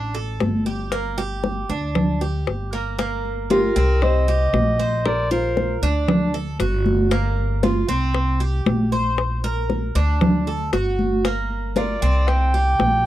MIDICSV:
0, 0, Header, 1, 6, 480
1, 0, Start_track
1, 0, Key_signature, -2, "minor"
1, 0, Tempo, 516351
1, 859, Time_signature, 4, 2, 24, 8
1, 12142, End_track
2, 0, Start_track
2, 0, Title_t, "Clarinet"
2, 0, Program_c, 0, 71
2, 3269, Note_on_c, 0, 70, 86
2, 3750, Note_on_c, 0, 75, 102
2, 3764, Note_off_c, 0, 70, 0
2, 4704, Note_off_c, 0, 75, 0
2, 4712, Note_on_c, 0, 74, 102
2, 4928, Note_off_c, 0, 74, 0
2, 4946, Note_on_c, 0, 72, 91
2, 5389, Note_off_c, 0, 72, 0
2, 10945, Note_on_c, 0, 74, 93
2, 11417, Note_on_c, 0, 79, 120
2, 11431, Note_off_c, 0, 74, 0
2, 12142, Note_off_c, 0, 79, 0
2, 12142, End_track
3, 0, Start_track
3, 0, Title_t, "Nylon-string guitar"
3, 0, Program_c, 1, 24
3, 3264, Note_on_c, 1, 67, 74
3, 3708, Note_off_c, 1, 67, 0
3, 3743, Note_on_c, 1, 72, 84
3, 4696, Note_off_c, 1, 72, 0
3, 4700, Note_on_c, 1, 70, 95
3, 4922, Note_off_c, 1, 70, 0
3, 4939, Note_on_c, 1, 65, 74
3, 5385, Note_off_c, 1, 65, 0
3, 10935, Note_on_c, 1, 70, 75
3, 11414, Note_off_c, 1, 70, 0
3, 11414, Note_on_c, 1, 75, 89
3, 12142, Note_off_c, 1, 75, 0
3, 12142, End_track
4, 0, Start_track
4, 0, Title_t, "Cuban tres"
4, 0, Program_c, 2, 25
4, 0, Note_on_c, 2, 62, 71
4, 131, Note_off_c, 2, 62, 0
4, 135, Note_on_c, 2, 69, 69
4, 603, Note_off_c, 2, 69, 0
4, 614, Note_on_c, 2, 67, 72
4, 849, Note_off_c, 2, 67, 0
4, 855, Note_on_c, 2, 58, 85
4, 1089, Note_off_c, 2, 58, 0
4, 1094, Note_on_c, 2, 67, 86
4, 1562, Note_off_c, 2, 67, 0
4, 1576, Note_on_c, 2, 62, 76
4, 2043, Note_off_c, 2, 62, 0
4, 2057, Note_on_c, 2, 67, 67
4, 2523, Note_off_c, 2, 67, 0
4, 2536, Note_on_c, 2, 58, 78
4, 2765, Note_off_c, 2, 58, 0
4, 2776, Note_on_c, 2, 58, 83
4, 3243, Note_off_c, 2, 58, 0
4, 3256, Note_on_c, 2, 65, 77
4, 3490, Note_off_c, 2, 65, 0
4, 3495, Note_on_c, 2, 60, 95
4, 3962, Note_off_c, 2, 60, 0
4, 3980, Note_on_c, 2, 67, 77
4, 4444, Note_off_c, 2, 67, 0
4, 4457, Note_on_c, 2, 72, 73
4, 4923, Note_off_c, 2, 72, 0
4, 4936, Note_on_c, 2, 70, 79
4, 5403, Note_off_c, 2, 70, 0
4, 5418, Note_on_c, 2, 62, 94
4, 5883, Note_off_c, 2, 62, 0
4, 5895, Note_on_c, 2, 69, 73
4, 6129, Note_off_c, 2, 69, 0
4, 6135, Note_on_c, 2, 66, 75
4, 6602, Note_off_c, 2, 66, 0
4, 6612, Note_on_c, 2, 58, 84
4, 7080, Note_off_c, 2, 58, 0
4, 7093, Note_on_c, 2, 65, 70
4, 7326, Note_off_c, 2, 65, 0
4, 7330, Note_on_c, 2, 60, 91
4, 7799, Note_off_c, 2, 60, 0
4, 7811, Note_on_c, 2, 67, 71
4, 8280, Note_off_c, 2, 67, 0
4, 8294, Note_on_c, 2, 72, 72
4, 8762, Note_off_c, 2, 72, 0
4, 8775, Note_on_c, 2, 70, 84
4, 9242, Note_off_c, 2, 70, 0
4, 9252, Note_on_c, 2, 62, 93
4, 9720, Note_off_c, 2, 62, 0
4, 9735, Note_on_c, 2, 69, 68
4, 9969, Note_off_c, 2, 69, 0
4, 9975, Note_on_c, 2, 66, 71
4, 10442, Note_off_c, 2, 66, 0
4, 10455, Note_on_c, 2, 58, 83
4, 10922, Note_off_c, 2, 58, 0
4, 10935, Note_on_c, 2, 65, 71
4, 11169, Note_off_c, 2, 65, 0
4, 11175, Note_on_c, 2, 60, 92
4, 11642, Note_off_c, 2, 60, 0
4, 11657, Note_on_c, 2, 67, 71
4, 12123, Note_off_c, 2, 67, 0
4, 12142, End_track
5, 0, Start_track
5, 0, Title_t, "Upright bass"
5, 0, Program_c, 3, 32
5, 0, Note_on_c, 3, 33, 82
5, 339, Note_off_c, 3, 33, 0
5, 372, Note_on_c, 3, 31, 91
5, 1514, Note_off_c, 3, 31, 0
5, 1575, Note_on_c, 3, 38, 91
5, 2259, Note_off_c, 3, 38, 0
5, 2296, Note_on_c, 3, 31, 74
5, 3436, Note_off_c, 3, 31, 0
5, 3496, Note_on_c, 3, 36, 91
5, 4180, Note_off_c, 3, 36, 0
5, 4212, Note_on_c, 3, 34, 84
5, 5353, Note_off_c, 3, 34, 0
5, 5413, Note_on_c, 3, 38, 83
5, 6098, Note_off_c, 3, 38, 0
5, 6129, Note_on_c, 3, 31, 91
5, 7272, Note_off_c, 3, 31, 0
5, 7329, Note_on_c, 3, 36, 92
5, 8016, Note_off_c, 3, 36, 0
5, 8051, Note_on_c, 3, 34, 85
5, 9193, Note_off_c, 3, 34, 0
5, 9251, Note_on_c, 3, 38, 91
5, 9937, Note_off_c, 3, 38, 0
5, 9972, Note_on_c, 3, 31, 78
5, 11113, Note_off_c, 3, 31, 0
5, 11173, Note_on_c, 3, 36, 88
5, 11858, Note_off_c, 3, 36, 0
5, 11895, Note_on_c, 3, 34, 79
5, 12142, Note_off_c, 3, 34, 0
5, 12142, End_track
6, 0, Start_track
6, 0, Title_t, "Drums"
6, 138, Note_on_c, 9, 63, 34
6, 231, Note_off_c, 9, 63, 0
6, 376, Note_on_c, 9, 60, 69
6, 376, Note_on_c, 9, 61, 82
6, 381, Note_on_c, 9, 63, 84
6, 469, Note_off_c, 9, 60, 0
6, 469, Note_off_c, 9, 61, 0
6, 474, Note_off_c, 9, 63, 0
6, 618, Note_on_c, 9, 63, 36
6, 711, Note_off_c, 9, 63, 0
6, 853, Note_on_c, 9, 60, 74
6, 860, Note_on_c, 9, 63, 33
6, 946, Note_off_c, 9, 60, 0
6, 953, Note_off_c, 9, 63, 0
6, 1096, Note_on_c, 9, 60, 36
6, 1099, Note_on_c, 9, 63, 35
6, 1189, Note_off_c, 9, 60, 0
6, 1192, Note_off_c, 9, 63, 0
6, 1335, Note_on_c, 9, 60, 60
6, 1337, Note_on_c, 9, 63, 48
6, 1428, Note_off_c, 9, 60, 0
6, 1430, Note_off_c, 9, 63, 0
6, 1576, Note_on_c, 9, 60, 35
6, 1580, Note_on_c, 9, 63, 31
6, 1669, Note_off_c, 9, 60, 0
6, 1673, Note_off_c, 9, 63, 0
6, 1816, Note_on_c, 9, 60, 74
6, 1821, Note_on_c, 9, 63, 34
6, 1821, Note_on_c, 9, 64, 78
6, 1909, Note_off_c, 9, 60, 0
6, 1914, Note_off_c, 9, 63, 0
6, 1914, Note_off_c, 9, 64, 0
6, 2060, Note_on_c, 9, 60, 35
6, 2062, Note_on_c, 9, 63, 33
6, 2153, Note_off_c, 9, 60, 0
6, 2155, Note_off_c, 9, 63, 0
6, 2298, Note_on_c, 9, 60, 71
6, 2298, Note_on_c, 9, 61, 81
6, 2299, Note_on_c, 9, 63, 36
6, 2391, Note_off_c, 9, 60, 0
6, 2391, Note_off_c, 9, 61, 0
6, 2392, Note_off_c, 9, 63, 0
6, 2780, Note_on_c, 9, 60, 73
6, 2785, Note_on_c, 9, 63, 35
6, 2873, Note_off_c, 9, 60, 0
6, 2878, Note_off_c, 9, 63, 0
6, 3022, Note_on_c, 9, 63, 35
6, 3115, Note_off_c, 9, 63, 0
6, 3259, Note_on_c, 9, 63, 87
6, 3262, Note_on_c, 9, 60, 64
6, 3352, Note_off_c, 9, 63, 0
6, 3355, Note_off_c, 9, 60, 0
6, 3500, Note_on_c, 9, 63, 35
6, 3593, Note_off_c, 9, 63, 0
6, 3738, Note_on_c, 9, 60, 75
6, 3741, Note_on_c, 9, 63, 37
6, 3831, Note_off_c, 9, 60, 0
6, 3834, Note_off_c, 9, 63, 0
6, 3983, Note_on_c, 9, 63, 32
6, 4076, Note_off_c, 9, 63, 0
6, 4218, Note_on_c, 9, 60, 64
6, 4218, Note_on_c, 9, 61, 86
6, 4218, Note_on_c, 9, 63, 80
6, 4311, Note_off_c, 9, 60, 0
6, 4311, Note_off_c, 9, 61, 0
6, 4311, Note_off_c, 9, 63, 0
6, 4458, Note_on_c, 9, 63, 33
6, 4551, Note_off_c, 9, 63, 0
6, 4698, Note_on_c, 9, 63, 39
6, 4700, Note_on_c, 9, 60, 71
6, 4791, Note_off_c, 9, 63, 0
6, 4793, Note_off_c, 9, 60, 0
6, 4938, Note_on_c, 9, 63, 36
6, 4940, Note_on_c, 9, 60, 38
6, 5031, Note_off_c, 9, 63, 0
6, 5033, Note_off_c, 9, 60, 0
6, 5177, Note_on_c, 9, 63, 59
6, 5178, Note_on_c, 9, 60, 58
6, 5270, Note_off_c, 9, 63, 0
6, 5271, Note_off_c, 9, 60, 0
6, 5416, Note_on_c, 9, 63, 34
6, 5420, Note_on_c, 9, 60, 32
6, 5509, Note_off_c, 9, 63, 0
6, 5513, Note_off_c, 9, 60, 0
6, 5655, Note_on_c, 9, 63, 34
6, 5655, Note_on_c, 9, 64, 85
6, 5657, Note_on_c, 9, 60, 77
6, 5748, Note_off_c, 9, 63, 0
6, 5748, Note_off_c, 9, 64, 0
6, 5750, Note_off_c, 9, 60, 0
6, 5896, Note_on_c, 9, 60, 34
6, 5899, Note_on_c, 9, 63, 37
6, 5989, Note_off_c, 9, 60, 0
6, 5992, Note_off_c, 9, 63, 0
6, 6133, Note_on_c, 9, 60, 68
6, 6133, Note_on_c, 9, 61, 83
6, 6139, Note_on_c, 9, 63, 31
6, 6226, Note_off_c, 9, 60, 0
6, 6226, Note_off_c, 9, 61, 0
6, 6232, Note_off_c, 9, 63, 0
6, 6375, Note_on_c, 9, 63, 73
6, 6468, Note_off_c, 9, 63, 0
6, 6614, Note_on_c, 9, 60, 77
6, 6617, Note_on_c, 9, 63, 34
6, 6707, Note_off_c, 9, 60, 0
6, 6710, Note_off_c, 9, 63, 0
6, 6857, Note_on_c, 9, 63, 35
6, 6950, Note_off_c, 9, 63, 0
6, 7094, Note_on_c, 9, 60, 60
6, 7098, Note_on_c, 9, 63, 90
6, 7187, Note_off_c, 9, 60, 0
6, 7191, Note_off_c, 9, 63, 0
6, 7339, Note_on_c, 9, 63, 35
6, 7432, Note_off_c, 9, 63, 0
6, 7572, Note_on_c, 9, 60, 74
6, 7578, Note_on_c, 9, 63, 37
6, 7664, Note_off_c, 9, 60, 0
6, 7671, Note_off_c, 9, 63, 0
6, 7815, Note_on_c, 9, 63, 34
6, 7908, Note_off_c, 9, 63, 0
6, 8053, Note_on_c, 9, 63, 83
6, 8055, Note_on_c, 9, 60, 72
6, 8055, Note_on_c, 9, 61, 85
6, 8146, Note_off_c, 9, 63, 0
6, 8148, Note_off_c, 9, 60, 0
6, 8148, Note_off_c, 9, 61, 0
6, 8293, Note_on_c, 9, 63, 34
6, 8386, Note_off_c, 9, 63, 0
6, 8535, Note_on_c, 9, 60, 73
6, 8535, Note_on_c, 9, 63, 34
6, 8628, Note_off_c, 9, 60, 0
6, 8628, Note_off_c, 9, 63, 0
6, 8774, Note_on_c, 9, 60, 37
6, 8775, Note_on_c, 9, 63, 36
6, 8867, Note_off_c, 9, 60, 0
6, 8868, Note_off_c, 9, 63, 0
6, 9013, Note_on_c, 9, 60, 57
6, 9015, Note_on_c, 9, 63, 54
6, 9106, Note_off_c, 9, 60, 0
6, 9108, Note_off_c, 9, 63, 0
6, 9254, Note_on_c, 9, 60, 33
6, 9258, Note_on_c, 9, 63, 33
6, 9347, Note_off_c, 9, 60, 0
6, 9351, Note_off_c, 9, 63, 0
6, 9493, Note_on_c, 9, 60, 67
6, 9498, Note_on_c, 9, 63, 33
6, 9498, Note_on_c, 9, 64, 92
6, 9586, Note_off_c, 9, 60, 0
6, 9591, Note_off_c, 9, 63, 0
6, 9591, Note_off_c, 9, 64, 0
6, 9735, Note_on_c, 9, 63, 33
6, 9736, Note_on_c, 9, 60, 34
6, 9828, Note_off_c, 9, 63, 0
6, 9829, Note_off_c, 9, 60, 0
6, 9973, Note_on_c, 9, 60, 69
6, 9973, Note_on_c, 9, 61, 84
6, 9976, Note_on_c, 9, 63, 36
6, 10066, Note_off_c, 9, 60, 0
6, 10066, Note_off_c, 9, 61, 0
6, 10069, Note_off_c, 9, 63, 0
6, 10214, Note_on_c, 9, 63, 63
6, 10307, Note_off_c, 9, 63, 0
6, 10454, Note_on_c, 9, 63, 35
6, 10455, Note_on_c, 9, 60, 71
6, 10547, Note_off_c, 9, 63, 0
6, 10548, Note_off_c, 9, 60, 0
6, 10692, Note_on_c, 9, 63, 34
6, 10785, Note_off_c, 9, 63, 0
6, 10931, Note_on_c, 9, 63, 82
6, 10938, Note_on_c, 9, 60, 55
6, 11024, Note_off_c, 9, 63, 0
6, 11031, Note_off_c, 9, 60, 0
6, 11173, Note_on_c, 9, 63, 35
6, 11266, Note_off_c, 9, 63, 0
6, 11414, Note_on_c, 9, 63, 33
6, 11415, Note_on_c, 9, 60, 74
6, 11507, Note_off_c, 9, 63, 0
6, 11508, Note_off_c, 9, 60, 0
6, 11657, Note_on_c, 9, 63, 36
6, 11750, Note_off_c, 9, 63, 0
6, 11893, Note_on_c, 9, 63, 87
6, 11897, Note_on_c, 9, 60, 73
6, 11897, Note_on_c, 9, 61, 86
6, 11986, Note_off_c, 9, 63, 0
6, 11990, Note_off_c, 9, 60, 0
6, 11990, Note_off_c, 9, 61, 0
6, 12142, End_track
0, 0, End_of_file